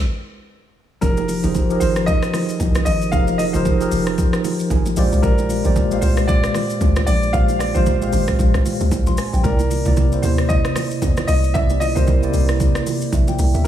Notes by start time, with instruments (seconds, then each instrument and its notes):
1.01 log drum bass F1, tine electric piano F3 D#4 G4 G#4 A#4, grand piano A#4, kick, low conga, shaker
1.17 high bongo, shaker
1.28 open hi-hat, low bongo, shaker
1.43 log drum bass F1, tine electric piano F3 D#4 G4 G#4 C5, low bongo, shaker
1.55 kick, high bongo, low conga, shaker
1.69 tine electric piano F3 D#4 G4 G#4 A#4, shaker
1.80 log drum bass G#1, grand piano C5, open hi-hat, shaker
1.96 cross-stick, shaker
2.06 grand piano D#5, kick, low conga, shaker
2.23 cross-stick, shaker
2.34 cross-stick, open hi-hat, low bongo, shaker
2.49 shaker
2.60 log drum bass C2, kick, high bongo, shaker
2.75 cross-stick, low bongo, shaker
2.85 log drum bass G#1, grand piano D#5, open hi-hat, shaker
3.02 shaker
3.12 log drum bass F1, tine electric piano F3 D#4 G4 G#4 A#4, grand piano F5, kick, low conga, shaker
3.28 high bongo, shaker
3.38 grand piano D#5, open hi-hat, low bongo, shaker
3.53 log drum bass F1, tine electric piano F3 D#4 G4 G#4 A#4, grand piano C5, low bongo, shaker
3.65 kick, high bongo, low conga, shaker
3.80 tine electric piano F3 D#4 G4 G#4 A#4, shaker
3.92 log drum bass F1, open hi-hat, shaker
4.07 cross-stick, shaker
4.18 kick, low conga, shaker
4.33 cross-stick, shaker
4.44 open hi-hat, low bongo, shaker
4.60 shaker
4.70 log drum bass G#1, tine electric piano G#5, kick, high bongo, shaker
4.86 low bongo, shaker
4.96 log drum bass A#1, tine electric piano A#2 G#3 G4 C5 D5 F5, open hi-hat, shaker
5.12 log drum bass C2, shaker
5.22 log drum bass A#1, grand piano A#4, kick, low conga, shaker
5.38 high bongo, shaker
5.49 open hi-hat, low bongo, shaker
5.64 log drum bass A#1, tine electric piano A#2 G#3 G4 C5 D5, low bongo, shaker
5.76 kick, high bongo, low conga, shaker
5.90 tine electric piano A#2 G#3 G4 C5 F5, shaker
6.01 log drum bass C2, grand piano C5, open hi-hat, shaker
6.17 cross-stick, shaker
6.27 grand piano D5, kick, low conga, shaker
6.44 cross-stick, shaker
6.54 cross-stick, open hi-hat, low bongo, shaker
6.70 shaker
6.81 log drum bass D2, kick, high bongo, shaker
6.96 cross-stick, low bongo, shaker
7.06 log drum bass A#1, grand piano D5, open hi-hat, shaker
7.23 shaker
7.33 log drum bass A#1, tine electric piano A#2 G#3 G4 C5 F5, grand piano F5, kick, low conga, shaker
7.49 high bongo, shaker
7.59 grand piano D5, cross-stick, open hi-hat, low bongo, shaker
7.74 log drum bass A#1, tine electric piano A#2 G#3 G4 C5 F5, grand piano C5, low bongo, shaker
7.86 kick, high bongo, low conga, shaker
8.01 tine electric piano A#2 G#3 G4 C5 F5, shaker
8.13 log drum bass G#1, open hi-hat, shaker
8.28 kick, cross-stick, shaker
8.39 log drum bass A#1, kick, low conga, shaker
8.54 log drum bass C2, cross-stick, shaker
8.66 open hi-hat, low bongo, shaker
8.81 log drum bass D2, shaker
8.91 log drum bass C2, kick, high bongo, shaker
9.07 log drum bass A#1, tine electric piano C6, low bongo, shaker
9.18 tine electric piano G#5, cross-stick, open hi-hat, shaker
9.33 log drum bass A#1, tine electric piano G5, shaker
9.43 log drum bass C2, tine electric piano C3 A#3 E4 D5, grand piano A#4, kick, low conga, shaker
9.59 high bongo, shaker
9.70 open hi-hat, low bongo, shaker
9.85 log drum bass C2, tine electric piano C3 A#3 E4 D5, low bongo, shaker
9.97 kick, high bongo, low conga, shaker
10.11 tine electric piano C3 A#3 E4 C5, shaker
10.22 log drum bass D#2, grand piano C5, open hi-hat, shaker
10.38 cross-stick, shaker
10.49 grand piano D#5, kick, low conga, shaker
10.65 cross-stick, shaker
10.76 cross-stick, open hi-hat, low bongo, shaker
10.91 shaker
11.02 log drum bass E2, kick, high bongo, shaker
11.17 cross-stick, low bongo, shaker
11.27 log drum bass C2, grand piano D#5, open hi-hat, shaker
11.44 shaker
11.54 log drum bass C2, tine electric piano C3 A#3 E4 D5, grand piano E5, kick, low conga, shaker
11.70 high bongo, shaker
11.80 grand piano D#5, open hi-hat, low bongo, shaker
11.95 log drum bass C2, tine electric piano C3 A#3 E4 A#4, grand piano C5, low bongo, shaker
12.07 kick, high bongo, low conga, shaker
12.22 tine electric piano C3 A#3 E4 D5, shaker
12.34 log drum bass C2, open hi-hat, shaker
12.49 cross-stick, shaker
12.60 kick, low conga, shaker
12.75 cross-stick, shaker
12.86 open hi-hat, low bongo, shaker
13.02 shaker
13.13 log drum bass A#1, tine electric piano E5, kick, high bongo, shaker
13.28 tine electric piano G5, low bongo, shaker
13.39 log drum bass C2, open hi-hat, shaker
13.54 log drum bass D#2, tine electric piano E5, shaker
13.64 grand piano A#4